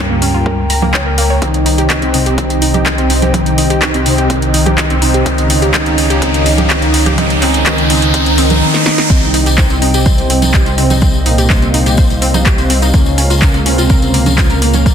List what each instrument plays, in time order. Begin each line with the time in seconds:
Already playing: detuned saw bass C#2, analog polysynth G2 G3, analog synth pad A#3 A#4 G5 A#5
0.10 synth pluck A#3
0.22 synth pluck C#4, open hi-hat
0.34 synth pluck F4
0.46 synth pluck A#4, kick
0.70 synth pluck A#5, open hi-hat
0.82 synth pluck A#3, low conga
0.94 synth pluck C#5, kick, clap
1.06 synth pluck A#4
1.18 synth pluck A#3, open hi-hat
1.30 synth pluck C#5
1.42 detuned saw bass C2, analog polysynth D#3 D#4, synth pluck C4, analog synth pad C4 C5 D#5 G5, kick, closed hi-hat, riser
1.54 closed hi-hat
1.66 synth pluck D#4, open hi-hat
1.78 synth pluck G4, closed hi-hat
1.90 synth pluck D#4, kick, clap, closed hi-hat
2.02 synth pluck C4, closed hi-hat
2.14 analog polysynth C3 C4, synth pluck D#4, open hi-hat
2.26 synth pluck G4, closed hi-hat
2.38 analog polysynth D#3 D#4, synth pluck C4, kick, closed hi-hat
2.50 closed hi-hat
2.62 synth pluck D#4, open hi-hat
2.74 synth pluck G4, closed hi-hat, low conga
2.86 synth pluck D#4, kick, clap, closed hi-hat
2.98 synth pluck C4, closed hi-hat
3.10 analog polysynth C3 C4, synth pluck D#4, open hi-hat
3.22 synth pluck G4, closed hi-hat, low conga
3.34 analog polysynth D#3 D#4, synth pluck C4, kick, closed hi-hat, low conga
3.46 closed hi-hat
3.58 synth pluck D#4, open hi-hat
3.70 synth pluck G4, closed hi-hat
3.82 synth pluck D#4, kick, clap, closed hi-hat
3.94 synth pluck C4, closed hi-hat
4.06 analog polysynth C3 C4, synth pluck D#4, open hi-hat
4.18 synth pluck G4, closed hi-hat
4.30 analog polysynth D#3 D#4, synth pluck C4, kick, closed hi-hat
4.42 closed hi-hat
4.54 synth pluck D#4, open hi-hat
4.66 synth pluck G4, closed hi-hat, low conga
4.78 synth pluck D#4, kick, clap, closed hi-hat
4.90 synth pluck C4, closed hi-hat
5.02 analog polysynth C3 C4, synth pluck D#4, open hi-hat
5.14 synth pluck G4, closed hi-hat
5.26 detuned saw bass C#2, analog polysynth D#3 D#4, synth pluck C4, analog synth pad C#4 C#5 F5 A#5, kick, closed hi-hat
5.38 closed hi-hat
5.50 synth pluck D#4, open hi-hat
5.62 synth pluck G4, closed hi-hat
5.74 analog polysynth D#3 D#4, synth pluck C4, kick, clap, closed hi-hat
5.86 closed hi-hat
5.98 synth pluck D#4, open hi-hat
6.10 synth pluck G4, closed hi-hat
6.22 analog polysynth D#3 D#4, synth pluck C4, kick, closed hi-hat
6.34 closed hi-hat
6.46 synth pluck D#4, open hi-hat
6.58 synth pluck G4, closed hi-hat, low conga
6.70 analog polysynth D#3 D#4, synth pluck C4, kick, clap, closed hi-hat
6.82 closed hi-hat
6.94 synth pluck D#4, open hi-hat
7.06 synth pluck G4, closed hi-hat, low conga
7.18 analog polysynth D#3 D#4, synth pluck C4, analog synth pad G#5, kick, closed hi-hat, low conga
7.30 closed hi-hat
7.42 analog polysynth D#3 D#4, synth pluck C4, clap, open hi-hat
7.54 closed hi-hat
7.66 analog polysynth D#3 D#4, synth pluck C4, kick, clap, closed hi-hat
7.78 closed hi-hat
7.90 analog polysynth D#3 D#4, synth pluck C4, open hi-hat
8.02 closed hi-hat
8.14 analog polysynth D#3 D#4, synth pluck C4, kick, closed hi-hat
8.26 closed hi-hat
8.38 analog polysynth D#3 D#4, synth pluck C4, open hi-hat
8.50 closed hi-hat, low conga
8.62 analog polysynth D#3 D#4
8.74 snare
8.86 analog polysynth D#3 D#4, snare
8.98 snare
9.10 detuned saw bass C2, analog polysynth D#3 D#4, analog synth pad C4 C5 D#5 G5, synth pluck C4, kick, closed hi-hat, tambourine
9.23 tambourine
9.34 synth pluck D#4, open hi-hat
9.46 synth pluck G4, closed hi-hat, tambourine
9.58 synth pluck C5, kick, clap, closed hi-hat
9.70 synth pluck C4, closed hi-hat, tambourine
9.82 analog polysynth C3 C4, synth pluck D#4, open hi-hat
9.94 synth pluck G4, closed hi-hat, tambourine
10.06 synth pluck C5, kick, closed hi-hat, tambourine
10.18 closed hi-hat, tambourine
10.30 synth pluck C4, open hi-hat
10.42 synth pluck D#4, closed hi-hat, tambourine, low conga
10.54 synth pluck G4, kick, clap, closed hi-hat
10.66 synth pluck C5, closed hi-hat, tambourine
10.78 analog polysynth C3 C4, synth pluck C4, open hi-hat
10.90 synth pluck D#4, closed hi-hat, tambourine, low conga
11.02 synth pluck C4, analog synth pad F5, kick, closed hi-hat, tambourine, low conga
11.14 tambourine
11.26 analog polysynth A#2 A#3, synth pluck D#4, open hi-hat
11.38 synth pluck G4, closed hi-hat, tambourine
11.50 synth pluck C5, kick, clap, closed hi-hat, tambourine
11.62 synth pluck C4, closed hi-hat, tambourine
11.74 synth pluck D#4, open hi-hat
11.86 synth pluck G4, closed hi-hat, tambourine
11.97 synth pluck C5, kick, closed hi-hat, tambourine
12.10 closed hi-hat, tambourine
12.22 synth pluck C4, open hi-hat
12.34 synth pluck D#4, closed hi-hat, tambourine, low conga
12.45 synth pluck G4, kick, clap, closed hi-hat, tambourine
12.58 synth pluck C5, closed hi-hat, tambourine
12.70 synth pluck C4, open hi-hat
12.82 synth pluck D#4, closed hi-hat, tambourine
12.93 detuned saw bass C#2, analog polysynth C#3 C#4, synth pluck A#3, analog synth pad A#3 A#4 A#5, kick, closed hi-hat, tambourine
13.06 tambourine
13.18 synth pluck C#4, open hi-hat
13.30 synth pluck F4, closed hi-hat, tambourine
13.42 synth pluck A#4, kick, clap, closed hi-hat, tambourine
13.54 synth pluck A#3, closed hi-hat, tambourine
13.66 analog polysynth C3 C4, synth pluck C#4, open hi-hat
13.78 synth pluck F4, closed hi-hat, tambourine
13.89 synth pluck A#4, kick, closed hi-hat, tambourine
14.02 closed hi-hat, tambourine
14.14 synth pluck A#3, open hi-hat
14.26 synth pluck C#4, closed hi-hat, tambourine, low conga
14.38 synth pluck F4, kick, clap, closed hi-hat, tambourine
14.50 synth pluck A#4, closed hi-hat, tambourine
14.62 analog polysynth A#2 A#3, synth pluck A#3, open hi-hat
14.73 synth pluck C#4, closed hi-hat, tambourine, low conga
14.86 synth pluck A#3, kick, closed hi-hat, tambourine, low conga